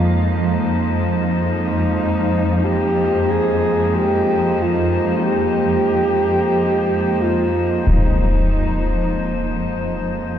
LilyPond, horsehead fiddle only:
\new Staff \with { instrumentName = "Horsehead fiddle" } { \time 4/4 \key f \minor \tempo 4 = 46 r4 ees'4 g'8 aes'8 g'8 f'8 | g'4. f'8 ees'4. r8 | }